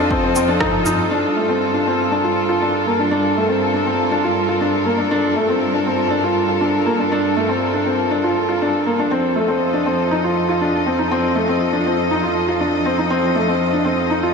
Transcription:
0.00 1.08 F2 medium
0.00 1.11 F3 medium
0.00 9.11 F4 medium
0.00 14.34 A4 medium
0.00 1.11 D#5 medium
0.11 0.22 C4 medium
0.11 kick loud
0.23 0.34 C4 medium
0.36 0.47 C4 medium
0.36 shaker medium
0.48 0.59 D4 medium
0.60 0.82 D#4 medium
0.60 kick loud
0.60 cross-stick medium
0.60 mid tom medium
0.86 1.08 D#4 medium
0.86 mid tom medium
0.86 shaker medium
1.10 9.08 G2 medium
1.10 9.10 G3 medium
1.10 1.33 D4 medium
1.36 1.47 A3 medium
1.49 1.70 C4 medium
1.74 1.84 D4 medium
1.78 9.10 A#4 medium
1.87 2.08 C4 medium
2.12 2.22 D4 medium
2.24 2.46 F4 medium
2.49 2.59 F4 medium
2.62 2.83 D4 medium
2.87 2.97 A#3 medium
2.99 3.10 D4 medium
3.11 3.33 D4 medium
3.37 3.47 A3 medium
3.49 3.70 C4 medium
3.74 3.84 D4 medium
3.86 4.08 C4 medium
4.11 4.22 D4 medium
4.24 4.45 F4 medium
4.49 4.59 F4 medium
4.61 4.83 D4 medium
4.86 4.97 A#3 medium
4.98 5.09 D4 medium
5.11 5.33 D4 medium
5.36 5.47 A3 medium
5.49 5.70 C4 medium
5.74 5.84 D4 medium
5.86 6.08 C4 medium
6.10 6.21 D4 medium
6.24 6.45 F4 medium
6.49 6.59 F4 medium
6.61 6.83 D4 medium
6.86 6.97 A#3 medium
6.99 7.09 D4 medium
7.12 7.33 D4 medium
7.36 7.47 A3 medium
7.49 7.70 C4 medium
7.73 7.84 D4 medium
7.86 8.08 C4 medium
8.11 8.22 D4 medium
8.24 8.45 F4 medium
8.49 8.59 F4 medium
8.62 8.83 D4 medium
8.86 8.97 A#3 medium
8.99 9.10 D4 medium
9.10 14.34 F2 medium
9.10 14.34 F3 medium
9.10 9.33 C4 medium
9.21 14.34 F4 medium
9.36 9.47 A3 medium
9.36 14.34 D#5 medium
9.48 9.70 C4 medium
9.73 9.84 D4 medium
9.86 10.08 C4 medium
10.11 10.22 D#4 medium
10.24 10.46 F4 medium
10.49 10.59 F4 medium
10.61 10.83 D4 medium
10.86 10.97 C4 medium
10.99 11.09 D#4 medium
11.11 11.33 C4 medium
11.35 11.46 A3 medium
11.48 11.70 C4 medium
11.73 11.84 D4 medium
11.86 12.08 C4 medium
12.11 12.22 D#4 medium
12.23 12.45 F4 medium
12.48 12.59 F4 medium
12.60 12.82 D4 medium
12.85 12.96 C4 medium
12.98 13.09 D#4 medium
13.10 13.32 C4 medium
13.35 13.46 A3 medium
13.48 13.70 C4 medium
13.73 13.84 D4 medium
13.85 14.07 C4 medium
14.10 14.21 D#4 medium
14.23 14.34 F4 medium

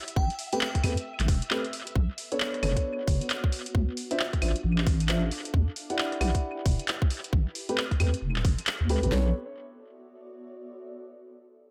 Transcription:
0.00 0.15 E4 medium
0.00 0.15 G4 medium
0.00 0.15 D5 medium
0.00 1.97 E5 medium
0.00 0.15 F#5 medium
0.08 closed hi-hat medium
0.16 0.29 A1 loud
0.16 0.28 G5 medium
0.16 kick loud
0.30 closed hi-hat soft
0.39 open hi-hat loud
0.53 0.61 A3 loud
0.53 0.61 C4 medium
0.53 0.61 G4 medium
0.53 0.61 B4 loud
0.53 0.84 G5 medium
0.53 closed hi-hat medium
0.61 clap loud
0.75 kick medium
0.75 cross-stick soft
0.75 closed hi-hat medium
0.84 0.96 E2 medium
0.84 0.92 A3 medium
0.84 0.92 C4 medium
0.84 0.92 G4 medium
0.84 0.92 B4 medium
0.84 open hi-hat loud
0.84 claves medium
0.97 closed hi-hat medium
1.20 1.27 A1 medium
1.20 clap medium
1.20 closed hi-hat medium
1.28 1.41 E1 medium
1.28 kick loud
1.28 open hi-hat loud
1.42 closed hi-hat medium
1.51 1.60 A3 medium
1.51 1.60 C4 medium
1.51 1.60 G4 medium
1.51 1.60 B4 medium
1.51 clap loud
1.65 closed hi-hat soft
1.73 open hi-hat loud
1.87 closed hi-hat medium
1.96 2.08 B1 loud
1.96 4.25 B3 medium
1.96 kick loud
2.18 open hi-hat loud
2.32 2.61 B3 medium
2.32 2.61 D4 medium
2.32 2.61 A4 medium
2.32 2.61 C#5 medium
2.32 closed hi-hat medium
2.40 clap loud
2.54 cross-stick soft
2.54 closed hi-hat soft
2.63 2.75 F#1 medium
2.63 3.51 B3 medium
2.63 3.51 D4 medium
2.63 3.51 A4 medium
2.63 3.51 C#5 medium
2.63 cross-stick medium
2.63 open hi-hat loud
2.63 claves medium
2.77 kick medium
2.77 closed hi-hat medium
3.08 3.20 F#1 medium
3.08 kick loud
3.08 open hi-hat loud
3.21 closed hi-hat medium
3.30 clap loud
3.30 closed hi-hat medium
3.44 kick loud
3.52 6.14 D4 medium
3.52 open hi-hat loud
3.66 closed hi-hat medium
3.75 3.87 D2 loud
3.75 kick loud
3.97 open hi-hat loud
4.09 4.20 D4 medium
4.09 4.20 F4 medium
4.09 6.06 A4 medium
4.09 4.20 C5 medium
4.09 4.20 E5 loud
4.09 closed hi-hat medium
4.19 clap loud
4.33 kick medium
4.33 cross-stick soft
4.33 closed hi-hat soft
4.42 4.54 A1 medium
4.42 4.51 D4 medium
4.42 4.51 F4 medium
4.42 4.51 C5 medium
4.42 4.51 E5 medium
4.42 open hi-hat loud
4.42 claves medium
4.56 closed hi-hat medium
4.64 5.30 A1 medium
4.78 clap medium
4.87 kick loud
4.87 open hi-hat loud
5.00 closed hi-hat medium
5.09 5.18 D4 medium
5.09 5.18 F4 medium
5.09 5.18 C5 medium
5.09 5.18 E5 medium
5.09 clap loud
5.09 closed hi-hat medium
5.31 8.05 E4 medium
5.31 open hi-hat loud
5.45 7.33 B4 medium
5.45 closed hi-hat medium
5.54 5.66 E2 loud
5.54 kick loud
5.76 open hi-hat loud
5.90 6.19 E4 medium
5.90 6.19 G4 medium
5.90 6.19 D5 medium
5.90 6.19 F#5 medium
5.90 closed hi-hat medium
5.99 clap loud
6.12 cross-stick soft
6.12 closed hi-hat soft
6.21 6.33 B1 medium
6.21 7.32 E4 medium
6.21 7.32 G4 medium
6.21 8.05 G4 medium
6.21 7.32 D5 medium
6.21 7.32 F#5 medium
6.21 cross-stick medium
6.21 open hi-hat loud
6.21 claves medium
6.35 kick medium
6.35 closed hi-hat medium
6.66 6.78 E1 medium
6.66 kick loud
6.66 open hi-hat loud
6.79 closed hi-hat medium
6.88 clap loud
6.88 closed hi-hat soft
7.02 kick loud
7.10 open hi-hat loud
7.24 closed hi-hat medium
7.33 7.45 A1 loud
7.33 9.12 A4 loud
7.33 kick loud
7.52 9.12 C6 medium
7.52 open hi-hat loud
7.69 7.78 A3 medium
7.69 7.78 C4 medium
7.69 7.78 G4 medium
7.69 7.78 B4 loud
7.69 closed hi-hat medium
7.78 clap loud
7.91 kick medium
7.91 cross-stick soft
7.91 closed hi-hat soft
8.00 8.12 E2 medium
8.00 8.09 A3 medium
8.00 8.09 C4 medium
8.00 8.09 G4 medium
8.00 8.09 B4 medium
8.00 open hi-hat loud
8.00 claves medium
8.14 closed hi-hat medium
8.22 8.44 E1 medium
8.36 clap medium
8.45 8.57 G1 medium
8.45 kick loud
8.45 open hi-hat loud
8.58 closed hi-hat medium
8.67 clap loud
8.67 closed hi-hat soft
8.81 9.05 D2 medium
8.89 8.98 A3 loud
8.89 8.98 C4 medium
8.89 8.98 G4 medium
8.89 8.98 B4 loud
8.89 open hi-hat loud
9.03 9.11 A1 medium
9.03 9.09 A3 medium
9.03 9.09 C4 medium
9.03 9.09 G4 medium
9.03 9.09 B4 medium
9.03 closed hi-hat medium
9.12 9.33 B1 medium
9.12 9.29 B3 medium
9.12 10.87 B3 medium
9.12 9.30 D4 medium
9.12 9.30 A4 medium
9.12 9.30 C#5 medium
9.12 snare loud
9.20 10.87 F#4 medium
9.27 10.87 C#5 medium
9.32 10.87 D5 medium

